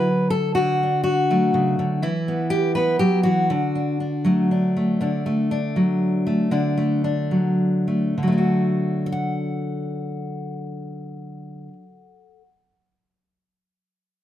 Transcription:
0, 0, Header, 1, 2, 480
1, 0, Start_track
1, 0, Key_signature, 2, "major"
1, 0, Tempo, 490597
1, 554, Time_signature, 3, 2, 24, 8
1, 3914, Tempo, 506757
1, 6794, Tempo, 547945
1, 7274, Tempo, 585938
1, 9674, Tempo, 596421
1, 12663, End_track
2, 0, Start_track
2, 0, Title_t, "Steel-string acoustic guitar"
2, 0, Program_c, 0, 25
2, 0, Note_on_c, 0, 50, 68
2, 0, Note_on_c, 0, 54, 57
2, 0, Note_on_c, 0, 71, 100
2, 293, Note_off_c, 0, 71, 0
2, 297, Note_on_c, 0, 69, 91
2, 526, Note_off_c, 0, 50, 0
2, 529, Note_off_c, 0, 54, 0
2, 532, Note_off_c, 0, 69, 0
2, 536, Note_on_c, 0, 66, 97
2, 560, Note_on_c, 0, 50, 76
2, 811, Note_on_c, 0, 62, 41
2, 1001, Note_off_c, 0, 66, 0
2, 1013, Note_on_c, 0, 66, 93
2, 1275, Note_on_c, 0, 54, 60
2, 1279, Note_on_c, 0, 57, 51
2, 1503, Note_off_c, 0, 50, 0
2, 1507, Note_on_c, 0, 49, 70
2, 1745, Note_off_c, 0, 49, 0
2, 1751, Note_on_c, 0, 50, 65
2, 1958, Note_off_c, 0, 54, 0
2, 1975, Note_off_c, 0, 66, 0
2, 1980, Note_on_c, 0, 52, 72
2, 1981, Note_off_c, 0, 62, 0
2, 1985, Note_on_c, 0, 64, 87
2, 1987, Note_off_c, 0, 50, 0
2, 1989, Note_off_c, 0, 57, 0
2, 2232, Note_on_c, 0, 59, 48
2, 2447, Note_on_c, 0, 67, 100
2, 2686, Note_off_c, 0, 67, 0
2, 2690, Note_on_c, 0, 71, 90
2, 2695, Note_off_c, 0, 59, 0
2, 2707, Note_on_c, 0, 59, 66
2, 2924, Note_off_c, 0, 71, 0
2, 2928, Note_on_c, 0, 67, 90
2, 2933, Note_off_c, 0, 52, 0
2, 2937, Note_on_c, 0, 54, 65
2, 2944, Note_off_c, 0, 64, 0
2, 3159, Note_off_c, 0, 67, 0
2, 3163, Note_on_c, 0, 66, 81
2, 3176, Note_off_c, 0, 54, 0
2, 3180, Note_on_c, 0, 52, 56
2, 3401, Note_off_c, 0, 59, 0
2, 3424, Note_on_c, 0, 50, 79
2, 3425, Note_off_c, 0, 52, 0
2, 3672, Note_on_c, 0, 62, 42
2, 3904, Note_off_c, 0, 62, 0
2, 3916, Note_on_c, 0, 62, 45
2, 4146, Note_on_c, 0, 54, 61
2, 4157, Note_on_c, 0, 57, 47
2, 4387, Note_off_c, 0, 62, 0
2, 4398, Note_on_c, 0, 62, 47
2, 4627, Note_off_c, 0, 57, 0
2, 4639, Note_on_c, 0, 57, 46
2, 4837, Note_off_c, 0, 54, 0
2, 4838, Note_off_c, 0, 50, 0
2, 4843, Note_off_c, 0, 62, 0
2, 4858, Note_off_c, 0, 66, 0
2, 4866, Note_on_c, 0, 50, 63
2, 4873, Note_on_c, 0, 62, 52
2, 5095, Note_off_c, 0, 57, 0
2, 5106, Note_on_c, 0, 57, 52
2, 5342, Note_off_c, 0, 62, 0
2, 5345, Note_on_c, 0, 62, 58
2, 5582, Note_on_c, 0, 54, 58
2, 6055, Note_off_c, 0, 57, 0
2, 6059, Note_on_c, 0, 57, 53
2, 6290, Note_off_c, 0, 50, 0
2, 6294, Note_off_c, 0, 62, 0
2, 6294, Note_on_c, 0, 50, 74
2, 6298, Note_on_c, 0, 62, 59
2, 6531, Note_off_c, 0, 57, 0
2, 6542, Note_on_c, 0, 57, 54
2, 6783, Note_off_c, 0, 62, 0
2, 6795, Note_on_c, 0, 62, 55
2, 7028, Note_off_c, 0, 54, 0
2, 7031, Note_on_c, 0, 54, 50
2, 7499, Note_off_c, 0, 57, 0
2, 7509, Note_on_c, 0, 57, 43
2, 7719, Note_off_c, 0, 50, 0
2, 7720, Note_off_c, 0, 54, 0
2, 7721, Note_off_c, 0, 62, 0
2, 7755, Note_on_c, 0, 50, 54
2, 7797, Note_on_c, 0, 54, 51
2, 7826, Note_off_c, 0, 57, 0
2, 7836, Note_on_c, 0, 57, 51
2, 7876, Note_on_c, 0, 62, 42
2, 7920, Note_on_c, 0, 66, 46
2, 8478, Note_off_c, 0, 57, 0
2, 8481, Note_on_c, 0, 69, 55
2, 8528, Note_off_c, 0, 66, 0
2, 8531, Note_on_c, 0, 78, 61
2, 10605, Note_off_c, 0, 50, 0
2, 10647, Note_off_c, 0, 54, 0
2, 10724, Note_off_c, 0, 62, 0
2, 11203, Note_off_c, 0, 69, 0
2, 11253, Note_off_c, 0, 78, 0
2, 12663, End_track
0, 0, End_of_file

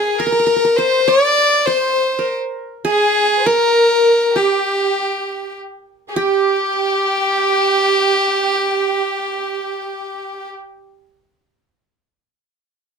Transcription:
0, 0, Header, 1, 4, 480
1, 0, Start_track
1, 0, Tempo, 595711
1, 636, Time_signature, 6, 3, 24, 8
1, 10462, End_track
2, 0, Start_track
2, 0, Title_t, "Qanun"
2, 0, Program_c, 0, 107
2, 0, Note_on_c, 0, 68, 71
2, 0, Note_on_c, 0, 70, 70
2, 155, Note_off_c, 0, 70, 0
2, 158, Note_on_c, 0, 70, 73
2, 210, Note_off_c, 0, 70, 0
2, 213, Note_on_c, 0, 70, 52
2, 257, Note_off_c, 0, 70, 0
2, 260, Note_on_c, 0, 70, 57
2, 315, Note_off_c, 0, 70, 0
2, 318, Note_on_c, 0, 70, 54
2, 372, Note_off_c, 0, 70, 0
2, 375, Note_on_c, 0, 70, 60
2, 451, Note_off_c, 0, 70, 0
2, 454, Note_on_c, 0, 70, 48
2, 517, Note_off_c, 0, 70, 0
2, 521, Note_on_c, 0, 70, 59
2, 631, Note_on_c, 0, 72, 74
2, 867, Note_on_c, 0, 74, 80
2, 899, Note_off_c, 0, 68, 0
2, 1344, Note_off_c, 0, 72, 0
2, 1348, Note_on_c, 0, 72, 80
2, 1432, Note_off_c, 0, 70, 0
2, 1661, Note_off_c, 0, 74, 0
2, 1762, Note_on_c, 0, 70, 52
2, 2198, Note_off_c, 0, 72, 0
2, 2293, Note_on_c, 0, 68, 81
2, 2674, Note_off_c, 0, 70, 0
2, 2791, Note_on_c, 0, 70, 86
2, 3270, Note_off_c, 0, 68, 0
2, 3511, Note_on_c, 0, 67, 65
2, 3702, Note_off_c, 0, 70, 0
2, 4522, Note_off_c, 0, 67, 0
2, 4966, Note_on_c, 0, 67, 86
2, 8750, Note_off_c, 0, 67, 0
2, 10462, End_track
3, 0, Start_track
3, 0, Title_t, "Violin"
3, 0, Program_c, 1, 40
3, 0, Note_on_c, 1, 68, 82
3, 148, Note_on_c, 1, 70, 86
3, 160, Note_off_c, 1, 68, 0
3, 614, Note_on_c, 1, 72, 87
3, 627, Note_off_c, 1, 70, 0
3, 874, Note_on_c, 1, 74, 97
3, 886, Note_off_c, 1, 72, 0
3, 1338, Note_on_c, 1, 72, 83
3, 1350, Note_off_c, 1, 74, 0
3, 1887, Note_off_c, 1, 72, 0
3, 2318, Note_on_c, 1, 68, 96
3, 2790, Note_on_c, 1, 70, 109
3, 2802, Note_off_c, 1, 68, 0
3, 3515, Note_on_c, 1, 67, 84
3, 3527, Note_off_c, 1, 70, 0
3, 4475, Note_off_c, 1, 67, 0
3, 4946, Note_on_c, 1, 67, 84
3, 8444, Note_off_c, 1, 67, 0
3, 10462, End_track
4, 0, Start_track
4, 0, Title_t, "Violin section"
4, 0, Program_c, 2, 48
4, 0, Note_on_c, 2, 68, 68
4, 149, Note_on_c, 2, 70, 76
4, 154, Note_off_c, 2, 68, 0
4, 622, Note_on_c, 2, 72, 82
4, 632, Note_off_c, 2, 70, 0
4, 851, Note_off_c, 2, 72, 0
4, 865, Note_on_c, 2, 74, 95
4, 1350, Note_off_c, 2, 74, 0
4, 1350, Note_on_c, 2, 72, 76
4, 1893, Note_off_c, 2, 72, 0
4, 2318, Note_on_c, 2, 68, 91
4, 2711, Note_off_c, 2, 68, 0
4, 2731, Note_on_c, 2, 72, 64
4, 2791, Note_off_c, 2, 72, 0
4, 2793, Note_on_c, 2, 70, 92
4, 3507, Note_on_c, 2, 67, 69
4, 3514, Note_off_c, 2, 70, 0
4, 4471, Note_off_c, 2, 67, 0
4, 4904, Note_on_c, 2, 68, 60
4, 4958, Note_off_c, 2, 68, 0
4, 4963, Note_on_c, 2, 67, 92
4, 8485, Note_off_c, 2, 67, 0
4, 10462, End_track
0, 0, End_of_file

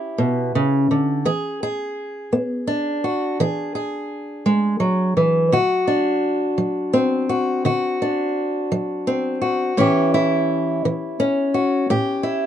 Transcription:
0, 0, Header, 1, 2, 480
1, 0, Start_track
1, 0, Tempo, 708383
1, 848, Time_signature, 12, 3, 24, 8
1, 8445, End_track
2, 0, Start_track
2, 0, Title_t, "Steel-string acoustic guitar"
2, 0, Program_c, 0, 25
2, 0, Note_on_c, 0, 61, 60
2, 0, Note_on_c, 0, 64, 54
2, 0, Note_on_c, 0, 67, 63
2, 124, Note_on_c, 0, 47, 62
2, 366, Note_off_c, 0, 47, 0
2, 375, Note_on_c, 0, 49, 64
2, 611, Note_off_c, 0, 49, 0
2, 615, Note_on_c, 0, 50, 58
2, 820, Note_off_c, 0, 64, 0
2, 821, Note_off_c, 0, 67, 0
2, 825, Note_off_c, 0, 61, 0
2, 850, Note_on_c, 0, 52, 66
2, 852, Note_off_c, 0, 50, 0
2, 853, Note_on_c, 0, 68, 62
2, 1091, Note_off_c, 0, 68, 0
2, 1104, Note_on_c, 0, 68, 70
2, 1283, Note_off_c, 0, 52, 0
2, 1576, Note_on_c, 0, 59, 59
2, 1812, Note_on_c, 0, 62, 60
2, 2007, Note_off_c, 0, 59, 0
2, 2058, Note_off_c, 0, 68, 0
2, 2060, Note_on_c, 0, 66, 51
2, 2297, Note_off_c, 0, 66, 0
2, 2304, Note_on_c, 0, 52, 78
2, 2310, Note_on_c, 0, 68, 64
2, 2533, Note_off_c, 0, 68, 0
2, 2542, Note_on_c, 0, 68, 58
2, 2732, Note_off_c, 0, 52, 0
2, 3021, Note_on_c, 0, 56, 67
2, 3249, Note_off_c, 0, 56, 0
2, 3252, Note_on_c, 0, 54, 62
2, 3494, Note_off_c, 0, 54, 0
2, 3501, Note_on_c, 0, 52, 58
2, 3707, Note_off_c, 0, 62, 0
2, 3710, Note_off_c, 0, 68, 0
2, 3738, Note_off_c, 0, 52, 0
2, 3743, Note_on_c, 0, 50, 76
2, 3749, Note_on_c, 0, 66, 64
2, 3981, Note_on_c, 0, 62, 59
2, 4171, Note_off_c, 0, 50, 0
2, 4457, Note_on_c, 0, 54, 61
2, 4699, Note_on_c, 0, 60, 62
2, 4888, Note_off_c, 0, 54, 0
2, 4934, Note_off_c, 0, 66, 0
2, 4942, Note_on_c, 0, 66, 54
2, 5178, Note_off_c, 0, 66, 0
2, 5183, Note_on_c, 0, 50, 73
2, 5188, Note_on_c, 0, 66, 63
2, 5417, Note_off_c, 0, 62, 0
2, 5433, Note_on_c, 0, 62, 54
2, 5610, Note_off_c, 0, 50, 0
2, 5907, Note_on_c, 0, 54, 65
2, 6134, Note_off_c, 0, 60, 0
2, 6147, Note_on_c, 0, 60, 56
2, 6330, Note_off_c, 0, 54, 0
2, 6372, Note_off_c, 0, 66, 0
2, 6380, Note_on_c, 0, 66, 51
2, 6589, Note_off_c, 0, 60, 0
2, 6592, Note_off_c, 0, 62, 0
2, 6615, Note_off_c, 0, 66, 0
2, 6622, Note_on_c, 0, 45, 67
2, 6626, Note_on_c, 0, 61, 59
2, 6628, Note_on_c, 0, 52, 60
2, 6633, Note_on_c, 0, 64, 54
2, 6642, Note_on_c, 0, 67, 60
2, 6869, Note_off_c, 0, 64, 0
2, 6872, Note_on_c, 0, 64, 63
2, 7047, Note_off_c, 0, 45, 0
2, 7350, Note_off_c, 0, 52, 0
2, 7353, Note_on_c, 0, 52, 66
2, 7575, Note_off_c, 0, 61, 0
2, 7587, Note_on_c, 0, 61, 60
2, 7771, Note_off_c, 0, 52, 0
2, 7819, Note_off_c, 0, 67, 0
2, 7822, Note_on_c, 0, 66, 53
2, 8053, Note_off_c, 0, 66, 0
2, 8064, Note_on_c, 0, 45, 77
2, 8068, Note_on_c, 0, 67, 62
2, 8286, Note_off_c, 0, 64, 0
2, 8289, Note_on_c, 0, 64, 55
2, 8445, Note_off_c, 0, 45, 0
2, 8445, Note_off_c, 0, 61, 0
2, 8445, Note_off_c, 0, 64, 0
2, 8445, Note_off_c, 0, 67, 0
2, 8445, End_track
0, 0, End_of_file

